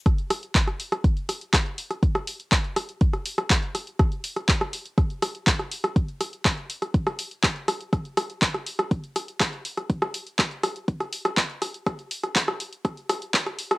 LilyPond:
\new DrumStaff \with { instrumentName = "Drums" } \drummode { \time 4/4 \tempo 4 = 122 <hh bd ss>16 hh16 <hho ss>16 hh16 <hc hh bd>16 <hh ss>16 hho16 <hh ss>16 <hh bd>16 hh16 <hho ss>16 hh16 <hc bd ss>16 hh16 hho16 <hh ss>16 | <hh bd>16 <hh ss>16 hho16 hh16 <hc hh bd ss>16 hh16 <hho ss>16 hh16 <hh bd>16 <hh ss>16 hho16 <hh ss>16 <hc hh bd>16 hh16 <hho ss>16 hh16 | <hh bd ss>16 hh16 hho16 <hh ss>16 <hc bd>16 <hh ss>16 hho16 hh16 <hh bd ss>16 hh16 <hho ss>16 hh16 <hc hh bd>16 <hh ss>16 hho16 <hh ss>16 | <hh bd>16 hh16 <hho ss>16 hh16 <hc hh bd ss>16 hh16 hho16 <hh ss>16 <hh bd>16 <hh ss>16 hho16 hh16 <hc hh bd ss>16 hh16 <hho ss>16 hh16 |
<hh bd ss>16 hh16 <hho ss>16 hh16 <hc hh bd>16 <hh ss>16 hho16 <hh ss>16 <hh bd>16 hh16 <hho ss>16 hh16 <hc bd ss>16 hh16 hho16 <hh ss>16 | <hh bd>16 <hh ss>16 hho16 hh16 <hc hh bd ss>16 hh16 <hho ss>16 hh16 <hh bd>16 <hh ss>16 hho16 <hh ss>16 <hc hh bd>16 hh16 <hho ss>16 hh16 | <hh bd ss>16 hh16 hho16 <hh ss>16 <hc bd>16 <hh ss>16 hho16 hh16 <hh bd ss>16 hh16 <hho ss>16 hh16 <hc hh bd>16 <hh ss>16 hho16 <hh ss>16 | }